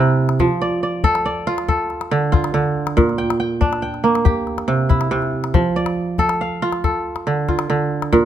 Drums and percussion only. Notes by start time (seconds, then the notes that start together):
0.29 calabash click
0.39 calabash thump
1.04 calabash thump
1.15 calabash click
1.58 calabash click
1.69 calabash thump
1.90 calabash click
2.01 calabash click
2.33 calabash thump, calabash click
2.44 calabash click
2.87 calabash click
2.98 calabash thump, calabash click
3.09 calabash click
3.30 calabash click
3.62 calabash thump
3.73 calabash click
3.94 calabash click
4.05 calabash click
4.15 calabash click
4.26 calabash thump
4.47 calabash click
4.58 calabash click
4.90 calabash thump
5.01 calabash click
5.22 calabash click
5.44 calabash click
5.54 calabash thump
5.86 calabash click
6.18 calabash thump
6.29 calabash click
6.73 calabash click
6.84 calabash thump
7.16 calabash click
7.48 calabash thump, calabash click
7.59 calabash click
7.70 calabash click
8.02 calabash click
8.13 calabash thump